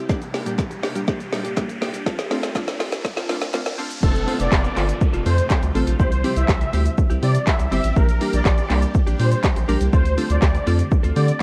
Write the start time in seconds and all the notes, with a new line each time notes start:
Already playing: G3, riser
0.09 A#2 A#3 D4 G4, kick, snare, shaker
0.21 muted clean electric guitar stroke, closed hi-hat, shaker
0.34 A#3 D4 G4, snare, open hi-hat, shaker
0.46 A#2 G3 A#3 D4 G4, closed hi-hat, shaker
0.58 kick, snare, clap, shaker
0.71 muted clean electric guitar stroke, closed hi-hat, shaker
0.83 A#3 D4 G4, snare, open hi-hat, shaker
0.95 A#2 G3 A#3 D4 G4, muted clean electric guitar stroke, closed hi-hat, shaker
1.07 A#3 D4 G4, kick, snare, shaker
1.20 muted clean electric guitar stroke, closed hi-hat, shaker
1.32 A#2 G3 A#3 D4 G4, muted clean electric guitar stroke, snare, open hi-hat, shaker
1.44 A#3 D4 G4, closed hi-hat, shaker
1.57 A#2 G3 A#3 D4 G4, kick, snare, clap, shaker
1.69 muted clean electric guitar stroke, closed hi-hat, shaker
1.81 A#3 D4 G4, snare, open hi-hat, shaker
1.94 A#3 D4 G4, closed hi-hat, shaker
2.06 C3 A3 C4 D4 F4 A4, kick, snare, shaker
2.18 muted clean electric guitar stroke, snare, closed hi-hat, shaker
2.30 A3 C4 D4 F4 A4, snare, open hi-hat, shaker
2.43 C4 F4 A4, snare, closed hi-hat, shaker
2.55 A3 C4 D4 F4, kick, snare, clap, shaker
2.67 muted clean electric guitar stroke, snare, closed hi-hat, shaker
2.79 C4 F4 A4, snare, open hi-hat, shaker
2.92 muted clean electric guitar stroke, snare, closed hi-hat, shaker
3.04 muted clean electric guitar stroke, kick, snare, shaker
3.16 C4 F4 A4, snare, closed hi-hat, shaker
3.29 A3 C4 D4 F4 A4, snare, open hi-hat, shaker
3.41 muted clean electric guitar stroke, snare, closed hi-hat, shaker
3.53 A3 C4 D4 F4, muted clean electric guitar stroke, snare, clap, shaker
3.66 muted clean electric guitar stroke, snare, closed hi-hat, shaker
3.78 A3 C4 D4 F4 A4, open hi-hat, shaker
3.90 C4 F4 A4, closed hi-hat, shaker
4.02 F1 C3 F3 A3 C4 F4 A4, kick, crash, downlifter, shaker
4.15 muted clean electric guitar stroke, closed hi-hat, shaker
4.27 A3 C4 F4 A4 C5, open hi-hat, shaker
4.39 F1 C4 F4 A4 D5, closed hi-hat, shaker
4.52 F1, kick, snare, clap, shaker
4.64 muted clean electric guitar stroke, closed hi-hat, shaker
4.76 G1 A3 C4 F4 A4 C5, clap, open hi-hat, shaker
4.89 muted clean electric guitar stroke, closed hi-hat, shaker
5.01 muted clean electric guitar stroke, kick, shaker
5.13 F1 C4 F4 A4, closed hi-hat, shaker
5.25 F2 A3 C4 F4 A4 C5, open hi-hat, shaker
5.38 muted clean electric guitar stroke, closed hi-hat, shaker
5.50 C4 F4 A4, kick, snare, clap, shaker
5.63 D2, closed hi-hat, shaker
5.75 A1 A3 C4 F4 A4 C5, muted clean electric guitar stroke, open hi-hat, shaker
5.87 A#1 C4 F4 A4, closed hi-hat, shaker
5.99 C2 E3 G3 C4 E4 G4 C5, kick, shaker
6.12 muted clean electric guitar stroke, closed hi-hat, shaker
6.24 G3 C4 E4 G4 C5, open hi-hat, shaker
6.36 C2 C4 E4 G4 E5, closed hi-hat, shaker
6.49 C2, kick, snare, clap, shaker
6.61 muted clean electric guitar stroke, closed hi-hat, shaker
6.73 D2 G3 C4 E4 G4 C5, open hi-hat, shaker
6.86 closed hi-hat, shaker
6.98 muted clean electric guitar stroke, kick, shaker
7.10 C2 C4 E4 G4, closed hi-hat, shaker
7.22 C3 G3 C4 E4 G4 C5 D5, open hi-hat, shaker
7.35 closed hi-hat, shaker
7.47 E5, kick, snare, clap, shaker
7.59 C2, muted clean electric guitar stroke, closed hi-hat, shaker
7.71 G1 G3 C4 E4 G4 C5 E5, open hi-hat, shaker
7.84 A1 C4 E4 G4, closed hi-hat, shaker
7.96 A#1 D3 A#3 D4 G4 A#4, kick, shaker
8.08 muted clean electric guitar stroke, closed hi-hat, shaker
8.21 G3 A#3 D4 G4 A#4, open hi-hat, shaker
8.33 A#1 A#3 D4 G4 D5, closed hi-hat, shaker
8.45 A#1, muted clean electric guitar stroke, kick, snare, clap, shaker
8.58 muted clean electric guitar stroke, closed hi-hat, shaker
8.70 C2 G3 A#3 D4 G4 A#4, clap, open hi-hat, shaker
8.82 muted clean electric guitar stroke, closed hi-hat, shaker
8.94 muted clean electric guitar stroke, kick, shaker
9.07 A#1 A#3 D4 G4, closed hi-hat, shaker
9.19 A#2 G3 A#3 D4 G4 C5, open hi-hat, shaker
9.31 muted clean electric guitar stroke, closed hi-hat, shaker
9.44 kick, snare, clap, shaker
9.56 A#1, muted clean electric guitar stroke, closed hi-hat, shaker
9.68 A#1 G3 A#3 D4 G4 A#4, open hi-hat, shaker
9.80 C2 A#3 D4 G4, closed hi-hat, shaker
9.92 D2 A3 C4 F4 A4 C5, kick, shaker
10.05 muted clean electric guitar stroke, closed hi-hat, shaker
10.17 A3 C4 D4 F4 A4, open hi-hat, shaker
10.29 D2 C4 F4 A4 D5, closed hi-hat, shaker
10.42 D2, kick, snare, clap, shaker
10.54 muted clean electric guitar stroke, closed hi-hat, shaker
10.66 F2 A3 C4 D4 F4 A4, open hi-hat, shaker
10.79 muted clean electric guitar stroke, closed hi-hat, shaker
10.91 muted clean electric guitar stroke, kick, shaker
11.03 D2 C4 F4 A4, closed hi-hat, shaker
11.15 D3 A3 C4 D4 F4 G4 A4 D5, open hi-hat, shaker
11.28 muted clean electric guitar stroke, closed hi-hat, shaker